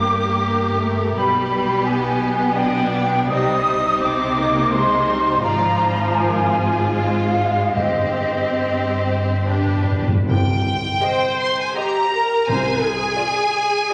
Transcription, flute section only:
Already playing: D6
1.15 B5
1.86 G#5
2.53 G5
3.29 D#6
4.03 D6
4.74 C6
5.43 A#5
6.15 G#5
6.91 F5
7.76 D#5

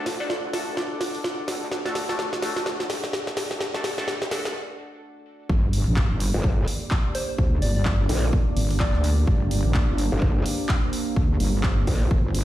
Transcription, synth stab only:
0.20 A3 D4 F#4 A4
0.53 A3 D4 F#4 A4
1.85 A3 D4 F#4 A4
2.09 A3 D4 F#4 A4
2.42 A3 D4 F#4 A4
3.74 A3 D4 F#4 A4
3.98 A3 D4 F#4 A4
4.31 A3 D4 F#4 A4

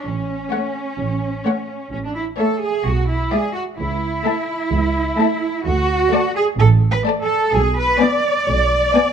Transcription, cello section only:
0.05 C#4
1.93 C#4
2.04 D4
2.16 E4
2.39 A4
2.62 G#4
2.85 F#4
3.08 E4
3.32 G#4
3.54 F#4
3.79 E4
5.66 F#4
6.36 G#4
6.60 A4
6.91 B4
7.22 A4
7.54 G#4
7.78 B4
8.01 D5

